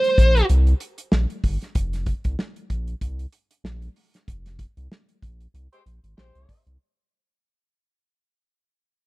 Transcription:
Already playing: C5
0.04 closed hi-hat
0.18 A#1, kick, closed hi-hat
0.37 closed hi-hat
0.49 C2, closed hi-hat
0.67 closed hi-hat
0.80 closed hi-hat
0.98 closed hi-hat
1.12 A#1, snare
1.30 closed hi-hat
1.44 G1, kick, open hi-hat
1.61 snare, closed hi-hat
1.75 F1, kick, closed hi-hat
1.93 snare, closed hi-hat
2.06 kick, closed hi-hat
2.24 C2, kick, closed hi-hat
2.39 snare
2.56 closed hi-hat
2.70 A#1, kick, closed hi-hat
2.87 closed hi-hat
3.01 C2, kick, closed hi-hat
3.19 closed hi-hat
3.32 closed hi-hat
3.51 closed hi-hat
3.64 A#1, snare
3.82 closed hi-hat
3.96 open hi-hat
4.14 snare, closed hi-hat
4.28 F1, kick, closed hi-hat
4.46 snare, closed hi-hat
4.59 kick, closed hi-hat
4.77 C2, closed hi-hat
4.92 snare
5.09 closed hi-hat
5.22 A#1, kick, closed hi-hat
5.41 closed hi-hat
5.54 C2, closed hi-hat
5.73 G#3 G4 C5, closed hi-hat
5.86 A#1, closed hi-hat
6.04 G#1, closed hi-hat
6.18 A#1 G#3 G4 C5, snare
6.35 C2, closed hi-hat
6.49 kick, open hi-hat
6.67 C2, closed hi-hat

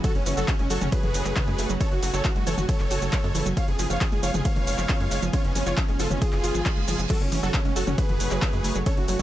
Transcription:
Already playing: C#3 F#4
0.04 F#3 A3 F#4 A4 C#5, kick, closed hi-hat, ride, shaker
0.15 F#1 F#2 C#4, closed hi-hat
0.26 F#1 E3 C#4, open hi-hat, shaker
0.37 F#1 F#3 F#4 A4, shaker
0.48 C#3 C#4, kick, clap, closed hi-hat, ride, shaker
0.59 F#1 G#3 C#4, closed hi-hat
0.70 F#1 F#3 F#4 A4, open hi-hat, shaker
0.81 F#1 F#3 C#4, mid tom, shaker
0.92 F#3 G#4 B4, kick, closed hi-hat, ride, shaker
1.03 F#1 F#2, closed hi-hat, mid tom
1.14 F#1, open hi-hat, shaker
1.25 F#1 F#3, clap, closed hi-hat, shaker
1.36 C#3, kick, clap, closed hi-hat, ride, shaker
1.48 F#2 G#3, closed hi-hat
1.59 F#1 A3, open hi-hat, shaker
1.70 F#1 F#3, shaker
1.80 C#4 A4 C#5 G#5, kick, closed hi-hat, ride, shaker
1.91 F#1 F#2 F#4, closed hi-hat
2.03 F#1 F#3 F#4, open hi-hat, shaker
2.13 F#1 F#3 A4 C#5, closed hi-hat, shaker
2.25 E3 F#4, kick, clap, closed hi-hat, ride, shaker
2.36 F#1 G#3 F#4, closed hi-hat
2.47 F#1 E3 A4 C#5, open hi-hat, shaker
2.58 F#1 F#4, closed hi-hat, mid tom, shaker
2.69 F#3 A4 C#5, kick, closed hi-hat, ride, shaker
2.80 F#1 F#2, clap, closed hi-hat
2.91 F#1 F#4, open hi-hat, shaker
3.02 F#1 F#3, closed hi-hat, shaker
3.13 kick, clap, closed hi-hat, ride, shaker
3.24 F#2 G#3, closed hi-hat
3.35 F#1 E3, open hi-hat, shaker
3.46 F#1 F#3, closed hi-hat, shaker
3.57 F3 G#3 B3 F4 C#5 F5, kick, closed hi-hat, ride, shaker
3.68 F#1 F2 G#4, closed hi-hat
3.79 F#1 F3 G#4, open hi-hat, shaker
3.90 F#1 F3 C#5 F5, closed hi-hat, shaker
4.01 C#3 G#4, kick, clap, closed hi-hat, ride, shaker
4.12 F#1 G#3 G#4, closed hi-hat
4.23 F#1 F3 C#5 F5, open hi-hat, shaker
4.34 F#1 F3 G#4, closed hi-hat, mid tom, shaker
4.45 F3 C#5 F5, kick, closed hi-hat, ride, shaker
4.56 F#1 F2, closed hi-hat, mid tom
4.67 F#1, open hi-hat, shaker
4.78 F#1 F3, clap, closed hi-hat, shaker
4.89 C#3, kick, clap, closed hi-hat, ride, shaker
5.00 F#2 G#3, closed hi-hat
5.11 F#1 G#3, open hi-hat, shaker
5.22 F#1 F3, closed hi-hat, shaker
5.33 C#4 F4 C#5, kick, closed hi-hat, ride, shaker
5.44 F#1 F2 C#4, closed hi-hat
5.55 F#1 F3 C#4, open hi-hat, shaker
5.66 F#1 F3 F4 C#5, closed hi-hat, shaker
5.77 F3 C#4, kick, clap, closed hi-hat, ride, shaker
5.89 F#1 G#3 C#4, closed hi-hat
6.00 F#1 F3 F4 A4, open hi-hat, shaker
6.11 F#1 C#4, closed hi-hat, mid tom, shaker
6.21 F3 F4 G#4, kick, closed hi-hat, ride, reverse cymbal, shaker
6.33 F#1 F2, clap, closed hi-hat
6.44 F#1 F4, open hi-hat, shaker
6.55 G#1 F3, shaker
6.66 kick, clap, closed hi-hat, ride, shaker
6.77 F#1 G#3, closed hi-hat
6.88 F#1 F3, open hi-hat, mid tom, shaker
6.99 F#1 F3, closed hi-hat, shaker
7.10 C#3 F#3 A3 F#4 A4 C#5, kick, closed hi-hat, crash, ride, shaker
7.21 F#1 F#2 C#4, closed hi-hat
7.32 F#1 E3 C#4, open hi-hat, shaker
7.43 F#1 F#3 F#4 A4, closed hi-hat, shaker
7.54 C#3 C#4, kick, clap, closed hi-hat, ride, shaker
7.65 F#1 G#3 C#4, closed hi-hat
7.76 F#1 F#3 F#4 A4, open hi-hat, shaker
7.87 F#1 F#3 C#4, mid tom, shaker
7.98 F#3 G#4 B4, kick, closed hi-hat, ride, shaker
8.09 F#1 F#2, closed hi-hat, mid tom
8.20 F#1, open hi-hat, shaker
8.31 F#1 F#3, clap, closed hi-hat, shaker
8.42 C#3, kick, clap, closed hi-hat, ride, shaker
8.53 F#2 G#3, closed hi-hat
8.64 F#1 A3, open hi-hat, shaker
8.75 F#1 F#3, closed hi-hat, shaker
8.86 C#4 E4 A4 C#5, kick, closed hi-hat, ride, shaker
8.97 F#1 F#2 F#4, closed hi-hat
9.08 F#1 F#3 F#4, open hi-hat, shaker

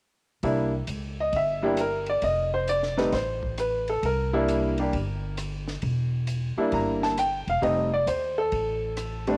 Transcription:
0.43 C2 G3 A#3 D4 E4, kick, ride
0.87 C#2, hi-hat pedal, ride
1.20 D#5
1.32 G1 E5, kick, ride
1.62 G3 A#3 D4 E4 G4
1.77 A#4, cross-stick, hi-hat pedal, ride
2.06 D5, ride
2.22 F1 D#5, kick, ride
2.54 C5
2.68 D5, hi-hat pedal, ride
2.83 snare
2.97 G3 A3 C4 D#4 B4, snare
3.12 A1 C5, kick, snare, ride
3.43 kick
3.58 B4, cross-stick, hi-hat pedal, ride
3.88 A4, ride
4.03 C2 A#4, kick, ride
4.33 G3 A#3 D4 E4
4.48 hi-hat pedal, ride
4.78 G3 A#3 D4 G4, ride
4.93 G1, kick, ride
5.37 cross-stick, hi-hat pedal, ride
5.68 snare
5.82 E1, kick, ride
6.27 hi-hat pedal, ride
6.57 G3 A#3 D4 E4, muted upright bass stroke
6.72 G1 A#5, kick, ride
7.03 A5, snare
7.17 G5, cross-stick, hi-hat pedal, ride
7.47 E1 F5, ride
7.61 F1 G3 A3 C4 D#4 D#5, kick, ride
7.93 D5
8.06 D#2 C5, hi-hat pedal, ride
8.38 A4
8.52 A1, kick, ride
8.97 cross-stick, hi-hat pedal, ride
9.27 G3 A3 C4 D4, ride

